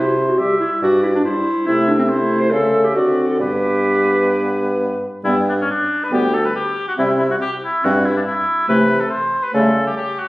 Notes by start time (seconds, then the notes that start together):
Already playing: C3 C5
0.17 E4
0.28 F#4
0.38 G3 G4 E5
0.60 E4
0.82 G2 F#4 D5
1.03 E4
1.15 D4
1.24 G3 E4 C5
1.66 C3 A3 E4 E5
1.88 D4
1.99 C4
2.09 A3 E4 C5
2.41 C5
2.51 C#3 A3 A4 E5
2.74 A3
2.84 G4
2.94 D3 C4 F#4 D5
3.28 A4
3.39 G2 B3 G4 B4
5.24 G2 G3 B3 E4 G5
5.49 D4
5.61 C#4
5.70 D4
6.04 B4
6.12 D2 G3 B3 G4 G5
6.34 A4
6.45 B4
6.56 G4
6.88 F#4
6.98 C3 G3 C4 E4 E5
7.19 E4
7.31 F#4
7.41 G4
7.63 E4
7.84 G2 G3 C4 F#4 E5
8.05 E4
8.16 D4
8.26 E4
8.68 C3 E3 A3 B4 E5
9.00 A4
9.10 C5
9.43 B4
9.54 C#3 G3 A3 A4 E5
9.87 G4
9.97 G4
10.19 F#4